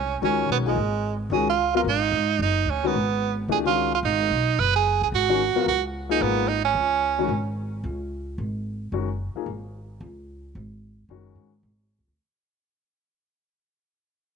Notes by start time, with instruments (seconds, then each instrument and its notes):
Already playing: upright bass C2, tenor saxophone C#4
0.22 upright bass C#2, grand piano D#3 G#3 C#4 F#4, tenor saxophone C#4
0.49 upright bass B1, tenor saxophone B3
0.66 grand piano F3 A#3 D#4 G#4, tenor saxophone G#3
0.76 upright bass G#1
1.30 upright bass C#2, grand piano D#3 G#3 C#4 F#4, tenor saxophone G#4
1.49 tenor saxophone F4
1.74 grand piano F#3 B3 F4 A#4, tenor saxophone F4
1.84 upright bass G#1
1.89 tenor saxophone D#4
2.12 upright bass G#2
2.39 upright bass F#1, tenor saxophone D#4
2.66 upright bass D2
2.70 tenor saxophone C#4
2.83 grand piano D#3 G#3 C#4 F#4, tenor saxophone B3
2.94 upright bass G#1
3.48 upright bass C#2, grand piano E3 A3 D4 G4, tenor saxophone G#4
3.65 grand piano D#3 G#3 C#4 F#4, tenor saxophone F4
3.95 tenor saxophone F4
4.03 upright bass G#1, tenor saxophone D#4
4.30 upright bass B1
4.59 upright bass F#1, tenor saxophone B4
4.76 tenor saxophone G#4
5.01 upright bass C2, tenor saxophone G#4
5.12 upright bass G#1, tenor saxophone F#4
5.29 grand piano D#3 G#3 C#4 F#4
5.55 grand piano F#3 B3 F4 A#4, muted upright bass stroke
5.66 upright bass C#2, tenor saxophone F#4
6.09 grand piano F3 A#3 D#4 G#4, tenor saxophone D#4
6.21 upright bass G#1, tenor saxophone B3
6.49 tenor saxophone D#4
6.65 tenor saxophone C#4
6.74 upright bass C#2
7.18 grand piano D#3 G#3 C#4 F#4
7.29 upright bass G#1
7.84 upright bass C#2
8.38 upright bass G#1
8.92 upright bass F#1, grand piano D#3 G#3 C#4 F#4
9.35 grand piano F3 A#3 D#4 G#4, muted upright bass stroke
9.46 upright bass G#1
10.00 upright bass C#2
10.55 upright bass G#1
11.09 upright bass F#1, grand piano D#3 G#3 C#4 F#4
11.35 upright bass G#2
11.63 upright bass G#1
11.99 upright bass C#2
12.08 upright bass D2